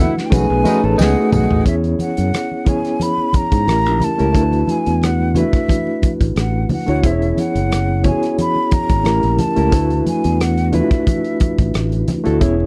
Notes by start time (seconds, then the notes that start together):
Already playing: A3 D4 E4 F#4 B4
0.00 B2 A3 E4 F#5
0.18 snare
0.26 G5
0.30 B1 A3 C#4 D#4 F#4 G#4 B4 G#5, kick, closed hi-hat, tambourine, muted conga, high conga
0.50 B1 B3 G#4, muted conga
0.64 A2 G#3 A3 C#4 D#4 F#4 G#4 B4, closed hi-hat, tambourine, high conga
0.84 A1 C#4 A4 A5
0.98 C#2 A2 B3 D#4 G#4 F#5, snare, tambourine
1.18 A3 F#4
1.32 B1 F#5, mid tom, tambourine, high conga, low conga
1.51 A1, floor tom
1.64 E2 B3 C#4 E4 G#4 C#5 E5, kick, closed hi-hat, muted conga
1.84 closed hi-hat, muted conga
1.99 F#5, closed hi-hat, high conga
2.17 F#2, closed hi-hat
2.33 cross-stick, closed hi-hat, muted conga
2.52 muted conga
2.65 B3 C#4 E4 G#4 C#5, kick, closed hi-hat, high conga, low conga
2.69 G#5
2.85 cross-stick, closed hi-hat
3.00 B5, closed hi-hat, muted conga, high conga
3.18 muted conga
3.33 A#5, muted fingered electric bass stroke, kick, closed hi-hat, high conga
3.52 G#2, kick, closed hi-hat
3.65 A1 A3 C#4 E4 G4 A#4, cross-stick, closed hi-hat, muted conga
3.85 A#1, closed hi-hat, muted conga
4.00 A5, closed hi-hat, high conga, low conga
4.18 C#2 A3 C#4 E4 G4 A#4, closed hi-hat
4.33 D2 A3 D4 E4 F#4 A#4, kick, closed hi-hat
4.42 B4
4.52 closed hi-hat, muted conga
4.67 G#5, closed hi-hat, high conga
4.86 E2, closed hi-hat
5.02 F#5, cross-stick, closed hi-hat, muted conga
5.20 muted conga
5.35 A3 D4 E4 F#4 B4 E5, closed hi-hat, high conga, low conga
5.53 kick, cross-stick, closed hi-hat
5.68 kick, closed hi-hat, muted conga, high conga
5.87 muted conga
6.02 muted fingered electric bass stroke, kick, closed hi-hat, high conga
6.21 A1, kick, closed hi-hat
6.36 A1 F#5, cross-stick, closed hi-hat
6.69 F#5, open hi-hat, high conga, low conga
6.87 D2 A3 D4 E4 F#4 C#5, closed hi-hat
7.03 E1 B3 C#4 E4 G#4 C5 E5, kick, closed hi-hat, muted conga
7.12 C#5
7.22 closed hi-hat
7.37 F#5, closed hi-hat, high conga
7.55 F#1, closed hi-hat
7.71 cross-stick, closed hi-hat, muted conga
8.03 B3 C#4 E4 F#4 C#5 G#5, kick, closed hi-hat, high conga, low conga
8.11 G#4
8.23 cross-stick, closed hi-hat
8.38 B5, closed hi-hat, muted conga, high conga
8.56 muted conga
8.71 A#5, muted fingered electric bass stroke, kick, closed hi-hat, high conga
8.89 G#1, kick, closed hi-hat
9.04 A1 A3 C#4 E4 G4 A#4, cross-stick, closed hi-hat
9.23 A#1, closed hi-hat
9.38 A5, closed hi-hat, high conga, low conga
9.56 C#2 A3 C#4 E4 G4 A#4, closed hi-hat
9.71 D2 A3 D4 E4 F#4 B4, kick, closed hi-hat
9.90 closed hi-hat, muted conga
10.06 G#5, closed hi-hat, high conga
10.24 E2, closed hi-hat
10.41 F#5, cross-stick, closed hi-hat
10.57 closed hi-hat
10.72 A3 D4 E4 F4 B4 E5, closed hi-hat, high conga, low conga
10.80 F#4
10.91 kick, cross-stick, closed hi-hat
11.07 kick, closed hi-hat, muted conga, high conga
11.24 closed hi-hat
11.40 muted fingered electric bass stroke, kick, closed hi-hat, high conga
11.58 A1, kick, closed hi-hat
11.74 A1, cross-stick, closed hi-hat, muted conga
11.92 closed hi-hat, muted conga
12.08 cross-stick, closed hi-hat, high conga, low conga
12.24 D2 A3 D4 E4 F#4 A4, closed hi-hat
12.39 E1 B3 C#4 E4 G#4 C#5, kick, closed hi-hat
12.60 muted conga